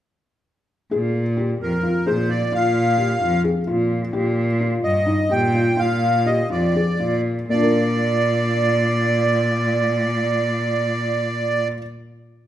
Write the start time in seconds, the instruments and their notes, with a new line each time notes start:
0.91 cello A#2, felt piano G#4
1.37 felt piano G4
1.62 cello F2, accordion A#4
1.83 felt piano F4
2.07 cello A#2, felt piano G#4, accordion C5
2.29 felt piano F4, accordion D5
2.52 cello A#2, felt piano F4, accordion F5
2.98 felt piano G4
3.21 cello F2, felt piano F4
3.44 felt piano G#4
3.67 cello A#2, felt piano F4
4.13 cello A#2, felt piano G4
4.61 felt piano F4
4.83 cello G2, accordion D#5
5.06 felt piano D#4
5.30 cello A#2, felt piano G4, accordion G5
5.55 felt piano F4
5.77 cello A#2, felt piano F4, accordion F5
6.26 felt piano G4, accordion D#5
6.50 cello F2, felt piano F4, accordion D5
6.76 felt piano G#4
7.00 cello A#2, felt piano F4
7.50 cello A#2, felt piano A#3, accordion D5
7.54 felt piano D4
7.58 felt piano F4 A#4